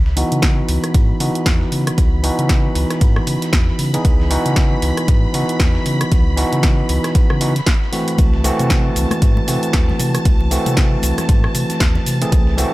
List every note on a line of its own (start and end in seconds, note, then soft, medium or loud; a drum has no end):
0.00 0.24 C#2 medium
0.00 8.20 B5 medium
0.06 snare soft
0.16 1.17 E3 medium
0.16 1.18 B3 medium
0.16 1.18 D#4 medium
0.16 1.18 F#4 loud
0.16 open hi-hat loud
0.16 ride medium
0.32 0.63 C#3 loud
0.32 closed hi-hat medium
0.42 kick loud
0.42 snare loud
0.42 closed hi-hat medium
0.42 ride medium
0.68 0.79 C#2 loud
0.68 open hi-hat medium
0.68 ride medium
0.84 cross-stick medium
0.84 closed hi-hat medium
0.94 1.13 G#2 loud
0.94 kick loud
0.94 closed hi-hat medium
0.94 ride medium
1.20 1.30 C#3 medium
1.20 2.21 E3 medium
1.20 2.21 B3 medium
1.20 2.21 D#4 medium
1.20 2.21 F#4 medium
1.20 open hi-hat loud
1.20 ride medium
1.35 closed hi-hat soft
1.46 1.65 E2 medium
1.46 kick loud
1.46 snare loud
1.46 closed hi-hat medium
1.46 ride medium
1.61 snare medium
1.72 1.91 C#3 loud
1.72 open hi-hat medium
1.72 ride medium
1.87 cross-stick medium
1.87 closed hi-hat medium
1.98 2.31 C#2 medium
1.98 kick loud
1.98 closed hi-hat medium
1.98 ride medium
2.23 3.90 E3 medium
2.23 3.90 B3 medium
2.23 3.90 D#4 medium
2.23 3.91 F#4 loud
2.23 open hi-hat loud
2.23 ride medium
2.39 2.70 C#3 loud
2.39 closed hi-hat soft
2.49 kick loud
2.49 snare loud
2.49 closed hi-hat medium
2.49 ride medium
2.75 2.85 C#2 loud
2.75 open hi-hat medium
2.75 ride medium
2.90 cross-stick medium
2.90 snare soft
2.90 closed hi-hat soft
3.01 3.20 G#2 loud
3.01 kick loud
3.01 closed hi-hat medium
3.01 ride medium
3.16 cross-stick medium
3.27 3.37 C#3 medium
3.27 open hi-hat loud
3.27 ride medium
3.42 snare soft
3.42 closed hi-hat soft
3.53 3.72 E2 medium
3.53 kick loud
3.53 snare loud
3.53 closed hi-hat medium
3.53 ride medium
3.68 snare soft
3.79 3.97 C#3 loud
3.79 open hi-hat medium
3.94 4.28 E3 medium
3.94 4.28 B3 medium
3.94 4.28 D#4 medium
3.94 4.28 G#4 medium
3.94 closed hi-hat medium
3.94 ride soft
4.05 4.38 C#2 medium
4.05 kick loud
4.05 closed hi-hat medium
4.05 ride medium
4.20 snare soft
4.30 5.31 E3 medium
4.30 5.31 B3 medium
4.30 5.32 D#4 medium
4.30 5.32 F#4 loud
4.30 open hi-hat loud
4.30 ride medium
4.46 4.76 C#3 loud
4.46 closed hi-hat soft
4.56 kick loud
4.56 snare loud
4.56 closed hi-hat medium
4.56 ride medium
4.82 4.92 C#2 medium
4.82 open hi-hat medium
4.82 ride medium
4.97 cross-stick medium
4.97 closed hi-hat soft
5.08 5.27 G#2 loud
5.08 kick loud
5.08 closed hi-hat medium
5.08 ride medium
5.33 5.44 C#3 medium
5.33 6.35 E3 medium
5.33 6.35 B3 medium
5.33 6.35 D#4 medium
5.33 6.35 F#4 medium
5.33 open hi-hat loud
5.33 ride medium
5.49 closed hi-hat soft
5.60 5.79 E2 medium
5.60 kick loud
5.60 snare loud
5.60 closed hi-hat medium
5.60 ride medium
5.75 snare medium
5.86 6.04 C#3 loud
5.86 open hi-hat medium
5.86 ride medium
6.01 cross-stick medium
6.01 closed hi-hat medium
6.12 6.44 C#2 medium
6.12 kick loud
6.12 closed hi-hat medium
6.12 ride medium
6.37 7.38 E3 medium
6.37 7.39 B3 medium
6.37 7.39 D#4 medium
6.37 7.39 F#4 medium
6.37 open hi-hat loud
6.37 ride medium
6.52 6.83 C#3 loud
6.52 closed hi-hat soft
6.63 kick loud
6.63 snare loud
6.63 closed hi-hat medium
6.63 ride medium
6.89 6.99 C#2 loud
6.89 open hi-hat medium
6.89 ride medium
7.04 cross-stick medium
7.04 snare soft
7.04 closed hi-hat soft
7.15 kick loud
7.15 closed hi-hat medium
7.15 ride medium
7.30 7.61 C#3 loud
7.30 cross-stick medium
7.41 7.53 E3 medium
7.41 7.53 B3 medium
7.41 7.53 D#4 medium
7.41 7.53 F#4 medium
7.41 open hi-hat loud
7.41 ride medium
7.56 snare soft
7.56 closed hi-hat soft
7.66 kick loud
7.66 snare loud
7.66 closed hi-hat medium
7.66 ride medium
7.82 snare soft
7.92 8.42 E3 medium
7.92 8.42 A3 medium
7.92 8.42 C4 medium
7.92 8.42 F#4 medium
7.92 open hi-hat medium
8.08 closed hi-hat medium
8.08 ride soft
8.18 8.51 C2 medium
8.18 12.74 A5 medium
8.18 kick loud
8.18 closed hi-hat medium
8.18 ride medium
8.18 high conga loud
8.18 cabasa soft
8.34 snare soft
8.44 9.45 E3 medium
8.44 9.45 A3 medium
8.44 9.45 C4 medium
8.44 9.46 F#4 loud
8.44 open hi-hat loud
8.44 ride medium
8.44 muted conga soft
8.44 cabasa medium
8.59 8.90 C3 loud
8.59 closed hi-hat soft
8.59 high conga medium
8.59 cabasa soft
8.70 kick loud
8.70 snare loud
8.70 closed hi-hat medium
8.70 ride medium
8.70 muted conga medium
8.70 cabasa soft
8.96 9.06 C2 loud
8.96 open hi-hat medium
8.96 ride medium
8.96 low conga medium
8.96 cabasa medium
9.11 cross-stick medium
9.11 closed hi-hat soft
9.11 muted conga medium
9.11 high conga loud
9.11 cabasa soft
9.22 9.41 G#2 loud
9.22 kick loud
9.22 closed hi-hat medium
9.22 ride medium
9.22 cabasa soft
9.37 muted conga medium
9.47 9.58 C3 medium
9.47 10.48 E3 medium
9.47 10.49 A3 medium
9.47 10.49 C4 medium
9.47 10.49 F#4 medium
9.47 open hi-hat loud
9.47 ride medium
9.47 high conga medium
9.47 cabasa medium
9.63 closed hi-hat soft
9.63 cabasa soft
9.73 9.92 D#2 medium
9.73 kick loud
9.73 snare loud
9.73 closed hi-hat medium
9.73 ride medium
9.73 muted conga soft
9.73 cabasa soft
9.89 snare medium
9.89 high conga medium
9.99 10.18 C3 loud
9.99 open hi-hat medium
9.99 ride medium
9.99 muted conga medium
9.99 cabasa medium
10.15 cross-stick medium
10.15 closed hi-hat medium
10.15 cabasa soft
10.25 10.58 C2 medium
10.25 kick loud
10.25 closed hi-hat medium
10.25 ride medium
10.25 high conga medium
10.25 cabasa soft
10.41 muted conga soft
10.51 12.18 E3 medium
10.51 12.18 A3 medium
10.51 12.18 C4 medium
10.51 12.18 F#4 loud
10.51 open hi-hat loud
10.51 ride medium
10.51 cabasa medium
10.66 10.97 C3 loud
10.66 closed hi-hat medium
10.66 muted conga medium
10.66 high conga medium
10.66 cabasa soft
10.77 kick loud
10.77 snare loud
10.77 closed hi-hat medium
10.77 ride medium
10.77 cabasa soft
11.02 11.13 C2 medium
11.02 open hi-hat medium
11.02 ride medium
11.02 muted conga soft
11.02 cabasa medium
11.18 cross-stick medium
11.18 snare soft
11.18 closed hi-hat soft
11.18 high conga medium
11.18 cabasa soft
11.29 11.47 G#2 loud
11.29 kick loud
11.29 closed hi-hat medium
11.29 ride medium
11.29 muted conga medium
11.29 cabasa soft
11.44 cross-stick medium
11.55 11.65 C3 medium
11.55 open hi-hat loud
11.55 ride medium
11.55 high conga medium
11.55 cabasa medium
11.70 snare soft
11.70 closed hi-hat soft
11.70 muted conga soft
11.70 cabasa soft
11.80 11.99 D#2 medium
11.80 kick loud
11.80 snare loud
11.80 closed hi-hat medium
11.80 ride medium
11.80 cabasa soft
11.95 snare soft
11.95 muted conga medium
11.95 high conga medium
12.06 12.25 C3 loud
12.06 open hi-hat medium
12.06 cabasa medium
12.21 12.55 E3 medium
12.21 12.56 A3 medium
12.21 12.56 C4 medium
12.21 12.56 G#4 medium
12.21 closed hi-hat medium
12.21 ride soft
12.21 cabasa soft
12.32 12.65 C2 medium
12.32 kick loud
12.32 closed hi-hat medium
12.32 ride medium
12.32 muted conga soft
12.32 high conga medium
12.32 cabasa soft
12.47 snare soft
12.57 12.74 E3 medium
12.57 12.74 A3 medium
12.57 12.74 C4 medium
12.57 12.74 F#4 loud
12.57 open hi-hat loud
12.57 ride medium
12.57 muted conga medium
12.57 cabasa medium